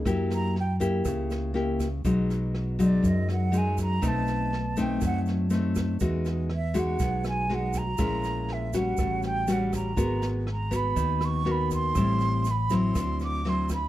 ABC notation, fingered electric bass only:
X:1
M:4/4
L:1/8
Q:1/4=121
K:Cb
V:1 name="Fingered electric bass" clef=bass
G,,4 D,,4 | =B,,,4 ^F,,4 | =B,,,4 ^F,,4 | =E,,4 =B,,,4 |
B,,,4 =A,,,4 | A,,,4 E,,4 | =A,,,4 =D,,4 |]